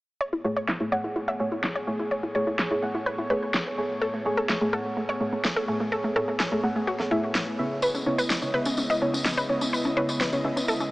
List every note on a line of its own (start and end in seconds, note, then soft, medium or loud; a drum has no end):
0.21 7.79 A2 medium
0.21 7.79 A3 medium
0.21 10.91 B3 medium
0.21 3.98 G#4 medium
0.21 0.28 C#5 medium
0.21 7.79 C#5 medium
0.33 0.40 E4 medium
0.44 0.78 A2 medium
0.44 0.78 A3 medium
0.44 0.52 E4 medium
0.44 0.77 G#4 medium
0.44 0.77 C#5 loud
0.56 0.64 C#5 medium
0.68 0.76 E4 medium
0.68 snare loud
0.80 0.89 A2 medium
0.80 0.89 A3 medium
0.80 0.88 E4 medium
0.80 0.89 G#4 medium
0.80 0.89 C#5 medium
0.92 1.06 A2 medium
0.92 1.06 A3 medium
0.92 1.06 G#4 medium
0.92 0.99 C#5 medium
0.92 1.06 F#5 medium
1.04 1.11 E4 medium
1.16 1.23 E4 medium
1.28 1.35 E5 medium
1.40 1.53 A2 medium
1.40 1.54 A3 medium
1.40 1.47 E4 medium
1.40 1.54 G#4 medium
1.40 1.53 C#5 medium
1.52 1.59 E4 medium
1.64 1.71 E4 medium
1.64 snare loud
1.75 1.83 C#5 medium
1.87 2.09 A2 medium
1.87 2.09 A3 medium
1.87 1.95 E4 medium
1.87 2.09 G#4 medium
1.87 2.09 C#5 medium
1.99 2.07 E4 medium
2.11 2.19 C#5 medium
2.23 2.30 E4 medium
2.35 2.68 A2 medium
2.35 2.68 A3 medium
2.35 2.68 G#4 medium
2.35 2.42 C#5 medium
2.35 2.68 C#5 loud
2.47 2.54 E4 medium
2.59 2.66 C#5 medium
2.59 snare loud
2.71 2.80 A2 medium
2.71 2.80 A3 medium
2.71 2.78 E4 medium
2.71 2.80 G#4 medium
2.71 2.80 C#5 medium
2.82 2.96 A2 medium
2.82 2.96 A3 medium
2.82 2.90 E4 medium
2.82 2.96 G#4 medium
2.82 2.96 F#5 medium
2.95 3.02 E4 medium
3.06 3.14 B4 medium
3.18 3.26 E4 medium
3.30 3.44 A2 medium
3.30 3.44 A3 medium
3.30 3.44 G#4 medium
3.30 3.92 B4 medium
3.30 3.44 C#5 medium
3.54 snare loud
3.78 4.00 A2 medium
3.78 4.00 A3 medium
3.78 4.00 G#4 medium
3.78 4.00 C#5 medium
4.02 7.79 G#4 medium
4.02 4.09 A4 medium
4.14 4.21 A3 medium
4.25 4.58 A2 medium
4.25 4.33 A3 medium
4.25 4.58 A3 medium
4.25 4.58 G#4 medium
4.25 4.58 C#5 loud
4.37 4.45 A4 medium
4.49 4.57 A3 medium
4.49 snare loud
4.61 4.70 A2 medium
4.61 4.70 A3 medium
4.61 4.69 A3 medium
4.61 4.70 G#4 medium
4.61 4.70 C#5 medium
4.73 4.87 A2 medium
4.73 4.87 A3 medium
4.73 4.87 G#4 medium
4.73 4.80 A4 medium
4.73 4.87 F#5 medium
4.85 4.92 A3 medium
4.97 5.04 A3 medium
5.09 5.16 C#5 medium
5.21 5.34 A2 medium
5.21 5.28 A3 medium
5.21 5.34 A3 medium
5.21 5.34 G#4 medium
5.21 5.34 C#5 medium
5.33 5.40 A3 medium
5.44 5.52 A3 medium
5.44 snare loud
5.56 5.64 A4 medium
5.68 5.90 A2 medium
5.68 5.76 A3 medium
5.68 5.90 A3 medium
5.68 5.90 G#4 medium
5.68 5.90 C#5 medium
5.80 5.88 A3 medium
5.92 5.99 A4 medium
6.04 6.11 A3 medium
6.16 6.49 A2 medium
6.16 6.49 A3 medium
6.16 6.49 G#4 medium
6.16 6.23 A4 medium
6.16 6.49 C#5 loud
6.28 6.35 A3 medium
6.40 6.47 G#4 medium
6.40 snare loud
6.52 6.61 A2 medium
6.52 6.61 A3 medium
6.52 6.59 A3 medium
6.52 6.61 G#4 medium
6.52 6.61 C#5 medium
6.63 6.77 A2 medium
6.63 6.77 A3 medium
6.63 6.71 A3 medium
6.63 6.77 G#4 medium
6.63 6.77 F#5 medium
6.76 6.83 A3 medium
6.87 6.95 F#4 medium
6.99 7.07 A3 medium
6.99 snare soft
7.11 7.33 A2 medium
7.11 7.33 A3 medium
7.11 7.73 E4 medium
7.11 7.33 G#4 medium
7.11 7.33 E5 medium
7.35 snare loud
7.59 8.04 C#3 medium
7.59 8.04 B3 medium
7.59 8.04 E4 medium
7.59 8.04 E5 loud
7.82 10.91 C#3 medium
7.82 10.91 G#3 medium
7.82 10.91 E4 medium
7.82 7.90 B4 medium
7.82 10.91 D#5 medium
7.82 tambourine medium
7.95 8.02 C#4 medium
7.95 tambourine soft
8.06 8.39 C#3 medium
8.06 8.39 B3 medium
8.06 8.14 C#4 medium
8.06 8.39 E4 medium
8.06 8.39 C#5 loud
8.18 8.26 B4 medium
8.18 tambourine medium
8.30 8.38 C#4 medium
8.30 snare loud
8.30 tambourine medium
8.42 8.51 C#3 medium
8.42 8.51 B3 medium
8.42 8.49 C#4 medium
8.42 8.51 E4 medium
8.42 8.51 C#5 medium
8.42 tambourine soft
8.54 8.68 C#3 medium
8.54 8.68 B3 medium
8.54 8.68 E4 medium
8.54 8.61 B4 medium
8.54 8.68 E5 medium
8.65 8.73 C#4 medium
8.65 tambourine medium
8.77 8.85 C#4 medium
8.77 tambourine medium
8.90 8.97 D#5 medium
8.90 tambourine soft
9.02 9.15 C#3 medium
9.02 9.15 B3 medium
9.02 9.09 C#4 medium
9.02 9.15 E4 medium
9.02 9.15 C#5 medium
9.14 9.21 C#4 medium
9.14 tambourine medium
9.25 9.33 C#4 medium
9.25 snare loud
9.25 tambourine medium
9.37 9.45 B4 medium
9.37 tambourine soft
9.49 9.71 C#3 medium
9.49 9.71 B3 medium
9.49 9.57 C#4 medium
9.49 9.71 E4 medium
9.49 9.71 C#5 medium
9.61 9.69 C#4 medium
9.61 tambourine medium
9.73 9.80 B4 medium
9.73 tambourine medium
9.84 9.92 C#4 medium
9.84 tambourine soft
9.97 10.30 C#3 medium
9.97 10.30 B3 medium
9.97 10.30 E4 medium
9.97 10.04 B4 medium
9.97 10.30 C#5 loud
10.09 10.16 C#4 medium
10.09 tambourine medium
10.21 10.28 B4 medium
10.21 snare loud
10.21 tambourine medium
10.33 10.42 C#3 medium
10.33 10.42 B3 medium
10.33 10.40 C#4 medium
10.33 10.42 E4 medium
10.33 10.42 C#5 medium
10.33 tambourine soft
10.44 10.58 C#3 medium
10.44 10.58 B3 medium
10.44 10.52 C#4 medium
10.44 10.58 E4 medium
10.44 10.58 E5 medium
10.57 10.64 C#4 medium
10.57 tambourine medium
10.68 10.76 A4 medium
10.68 tambourine medium
10.80 10.88 C#4 medium
10.80 tambourine soft